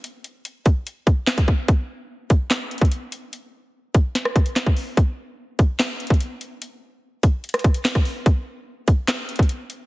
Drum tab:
HH |x-----------x-----------x-----------x-----------x-----------x-----------------x-----------------|x-----------------------------------x-----------x-----------x---x---x---x-----------x-----------|x-----------------------------------x-----------x-----------x-----x-----------------o-----------|x-----------------------------------x-----------x-----------x---x---x---x-----------x-----------|
CP |------------------------------------------------------------------------x-----------------------|------------------------------------------------x-----------------------------------------------|------------------------------------------------------------------------x-----------------------|------------------------------------------------x-----------------------------------------------|
SD |------------------------------------------------------------------------o-----------------------|------------------------------------------------o-----------------------------------------------|------------------------------------------------o-----r-----------------o-----------------------|------------------------------------------------o-----------------------------------------------|
BD |------------------------------------o-----------------------o-----------------o-----o-----------|o-----------------------------------o-----------------------------o-----------------------------|------------------------------------o-----------------------o-----------------o-----------------|o-----------------------------------o-----------------------------o-----------------------------|

HH |x-----------------------------------x-----------x--x--x--x--x-----x-----------------o-----------|x-----------------------------------x-----------x-----------x---x---x---x-----------x-----------|
CP |------------------------------------------------------------------------x-----------------------|------------------------------------------------x-----------------------------------------------|
SD |------------------------------------------------------r-----------------o-----r-----------------|------------------------------------------------o-----------------------------------------------|
BD |------------------------------------o-----------------------o-----------------o-----------------|o-----------------------------------o-----------------------------o-----------------------------|